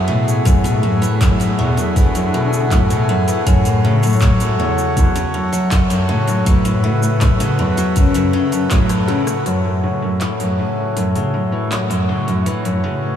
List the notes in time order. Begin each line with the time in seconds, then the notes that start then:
Already playing: A3 E4 F#4 G#4
0.08 A2 B2
0.28 open hi-hat, shaker
0.45 F#2 A2, kick, open hi-hat, shaker
0.64 B2, open hi-hat, shaker
0.83 F#2
1.02 E3, shaker
1.21 F#2, kick, clap, open hi-hat, shaker
1.40 F#2, open hi-hat, shaker
1.59 E2 B2
1.77 F#2, shaker
1.96 D3 E3, kick, open hi-hat, shaker
2.15 F#2, open hi-hat, shaker
2.34 B2
2.53 shaker
2.71 F#2 A2, kick, clap, open hi-hat, shaker
2.90 B2, open hi-hat, shaker
3.09 F#2
3.28 E3, open hi-hat, shaker
3.46 F#2 A2 A3 C#5, kick, open hi-hat, shaker
3.65 F#2, open hi-hat, shaker
3.85 C#3
4.03 F#2, shaker
4.06 shaker
4.09 shaker
4.12 shaker
4.16 shaker
4.19 F#3, kick, clap, open hi-hat, shaker
4.22 shaker
4.40 F#2, open hi-hat, shaker
4.59 E2 C#3
4.78 shaker
4.97 E2 F#2, kick, open hi-hat, shaker
5.16 C#3, open hi-hat, shaker
5.34 F#2
5.53 F#3, shaker
5.71 F#2, kick, clap, open hi-hat, shaker
5.90 F#2, open hi-hat, shaker
6.09 A2 C#3
6.27 F#2, open hi-hat, shaker
6.46 A2 F#3 B4, kick, open hi-hat, shaker
6.65 F#2, open hi-hat, shaker
6.84 C#3
7.03 shaker
7.21 F#2, kick, clap, open hi-hat, shaker
7.40 C#3, open hi-hat, shaker
7.59 E2 F#2
7.77 F#3, open hi-hat, shaker
7.96 F#2 C#3, kick, open hi-hat, shaker
8.14 F#2, open hi-hat, shaker
8.33 C#3
8.52 F#2, open hi-hat, shaker
8.71 A2 F#3, kick, clap, open hi-hat, shaker
8.89 F#2, cross-stick, open hi-hat, shaker
9.08 C#3, cross-stick
9.27 A2, cross-stick, open hi-hat, shaker
9.46 F#2 A2 A3 F#4 C#5, open hi-hat
9.65 F#2
9.84 C#3
10.02 F#2
10.21 E3, clap, open hi-hat
10.40 F#2, open hi-hat
10.59 C#3
10.97 F#2, open hi-hat
11.16 C#3, open hi-hat
11.34 F#2
11.52 E3
11.71 F#2, clap, open hi-hat
11.90 F#2, open hi-hat
12.09 C#3
12.28 F#2, open hi-hat
12.46 E3, open hi-hat
12.65 F#2, open hi-hat
12.84 C#3